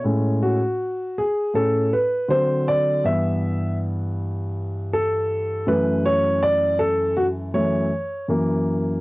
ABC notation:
X:1
M:4/4
L:1/8
Q:"Swing 16ths" 1/4=80
K:A
V:1 name="Grand piano"
z F2 G A B =c d | e2 z3 A2 B | c d A F c2 z2 |]
V:2 name="Grand piano" clef=bass
[A,,G,C] z3 [A,,CG] z [D,F,=C]2 | [=G,,E,B,]6- [G,,E,B,] [F,,E,A,]- | [F,,E,A,]4 [F,,E,A,] z [F,,E,^A,]2 |]